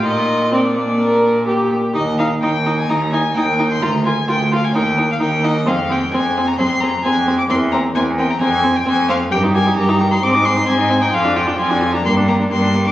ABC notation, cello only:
X:1
M:4/4
L:1/8
Q:1/4=130
K:Eb
V:1 name="Cello" clef=bass
B,,6- B,, z | E,,2 E,,2 E,,2 E,,2 | D,,2 D,,2 E,,2 E,,2 | F,,2 F,,2 F,,2 F,,2 |
=E,,2 E,,2 F,,2 F,,2 | G,,2 G,,2 A,,2 A,,2 | F,,2 F,,2 G,,2 G,,2 |]